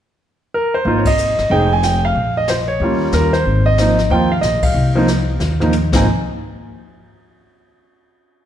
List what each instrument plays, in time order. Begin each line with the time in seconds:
0.54 grand piano A#4
0.74 grand piano C5
0.85 upright bass G#1, grand piano A#3 C4 D#4 F4, brush sweep, kick
0.98 grand piano C#5
1.05 grand piano D#5, kick, ride
1.18 hi-hat pedal
1.38 upright bass G1, snare
1.50 upright bass F1, grand piano G#3 C4 D#4 G#4 G5, brush sweep, kick
1.73 grand piano G#5
1.83 grand piano G5, snare, hi-hat pedal
2.05 grand piano F5
2.15 upright bass A#1, brush sweep, kick
2.37 grand piano D#5
2.48 grand piano C5, snare, hi-hat pedal
2.68 grand piano C#5
2.80 upright bass D#2, grand piano G3 A#3 C#4 F4, brush sweep, kick
3.12 upright bass D#2, grand piano A#4, snare, hi-hat pedal
3.33 grand piano C5, snare
3.45 upright bass G#1, brush sweep, kick
3.66 grand piano D#5
3.78 grand piano F3 A#3 C4 D#4, snare, hi-hat pedal
3.98 snare
4.10 upright bass D#2, grand piano F3 A#3 C4 F4 G5, brush sweep, kick
4.32 grand piano F5
4.41 upright bass A#1, grand piano D#5, snare, hi-hat pedal
4.63 grand piano F5, kick, ride
4.74 upright bass C2, brush sweep
4.95 grand piano F3 A#3 C4 D#4
5.08 snare, hi-hat pedal
5.40 upright bass D#2, snare
5.60 grand piano F3 A#3 C4 D#4, floor tom
5.73 hi-hat pedal, high tom
5.92 upright bass G#1, grand piano F3 A#3 C4 D#4 G#5, kick, snare, crash